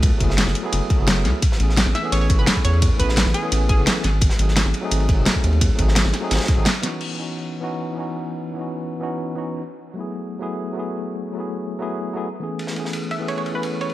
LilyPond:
<<
  \new Staff \with { instrumentName = "Synth pluck" } { \time 4/4 \key cis \minor \tempo 4 = 172 r1 | r4. e''8 cis''16 cis''16 r16 b'8 r16 cis''8 | r8 b'8 r8 gis'8 r8 gis'4 r8 | r1 |
r1 | r1 | r1 | r1 |
r1 | r4. e''8 cis''16 cis''16 r16 b'8 r16 cis''8 | }
  \new Staff \with { instrumentName = "Tine electric piano" } { \time 4/4 \key cis \minor <fis a b e' gis'>8 <fis a b e' gis'>4~ <fis a b e' gis'>16 <fis a b e' gis'>4 <fis a b e' gis'>4~ <fis a b e' gis'>16 | r8 <e a b cis' gis'>4~ <e a b cis' gis'>16 <e a b cis' gis'>4 <e a b cis' gis'>4~ <e a b cis' gis'>16~ | <e a b cis' gis'>8 <e a b cis' gis'>4~ <e a b cis' gis'>16 <e a b cis' gis'>4 <e a b cis' gis'>8. r8 | r8 <fis a bis dis' gis'>4~ <fis a bis dis' gis'>16 <fis a bis dis' gis'>4 <fis a bis dis' gis'>4~ <fis a bis dis' gis'>16~ |
<fis a bis dis' gis'>8 <fis a bis dis' gis'>4~ <fis a bis dis' gis'>16 <fis a bis dis' gis'>4 <fis a bis dis' gis'>16 r8 <e b cis' dis' fis'>8~ | <e b cis' dis' fis'>8 <e b cis' dis' fis'>4~ <e b cis' dis' fis'>16 <e b cis' dis' fis'>4 <e b cis' dis' fis'>4~ <e b cis' dis' fis'>16~ | <e b cis' dis' fis'>8 <e b cis' dis' fis'>4~ <e b cis' dis' fis'>16 <e b cis' dis' fis'>4 <e b cis' dis' fis'>8. r8 | r8 <fis a b e' gis'>4~ <fis a b e' gis'>16 <fis a b e' gis'>4 <fis a b e' gis'>4~ <fis a b e' gis'>16~ |
<fis a b e' gis'>8 <fis a b e' gis'>4~ <fis a b e' gis'>16 <fis a b e' gis'>4 <fis a b e' gis'>16 r8 <e a b cis' gis'>8~ | <e a b cis' gis'>8 <e a b cis' gis'>4~ <e a b cis' gis'>16 <e a b cis' gis'>4 <e a b cis' gis'>4~ <e a b cis' gis'>16 | }
  \new Staff \with { instrumentName = "Sub bass" } { \clef bass \time 4/4 \key cis \minor cis,16 r16 fis,,8. fis,,16 r8 fis,,16 r8 fis,,8. cis,16 r16 | r8 a,,8. a,,16 r8 a,,8. e,,16 r8 e,8~ | e,16 r16 a,,8. a,,16 r8 a,,8. e,,16 r8 gis,,8~ | gis,,16 r16 gis,,8. gis,,16 r8 gis,,8. dis,,16 r8 dis,8~ |
dis,16 r16 gis,,8. gis,,16 r8 gis,,16 r8 gis,,16 r4 | r1 | r1 | r1 |
r1 | r1 | }
  \new DrumStaff \with { instrumentName = "Drums" } \drummode { \time 4/4 <hh bd cymr>8 <hh bd cymr>16 sn16 <hh cymr sn>16 sn16 <hh cymr>8 <hh cymr sn>8 <hh bd cymr>8 <hh cymr sn>8 <hh cymr sn>8 | <hh bd cymr>16 sn16 <hh cymr>16 sn16 <hh cymr sn>16 <cymr sn>16 <hh cymr sn>8 <hh cymr>16 cymr16 <hh bd cymr>8 <hh cymr sn>16 bd16 <hh cymr>16 cymr16 | <hh bd cymr>8 <hh bd cymr>16 sn16 <hh cymr sn>16 sn16 <hh cymr>8 <hh cymr sn>8 <hh bd cymr>8 <hh cymr sn>8 <hh cymr sn>8 | <hh bd cymr>16 sn16 <hh cymr>16 sn16 <hh cymr sn>16 <cymr sn>16 <hh cymr>8 <hh cymr>16 cymr16 <hh bd cymr>8 <hh cymr sn>16 bd16 <hh cymr>16 cymr16 |
<hh bd cymr>8 <hh bd cymr>16 sn16 <hh cymr sn>16 sn16 <hh cymr sn>8 <hh cymr sn>32 <cymr sn>32 <cymr sn>32 <cymr sn>32 <hh bd cymr>8 <hh cymr sn>16 cymr16 <hh cymr sn>8 | cymc4 r4 r4 r4 | r4 r4 r4 r4 | r4 r4 r4 r4 |
r4 r4 r4 r4 | cymr16 sn16 cymr16 sn16 cymr16 cymr16 cymr8 cymr16 cymr16 cymr8 cymr8 cymr16 cymr16 | }
>>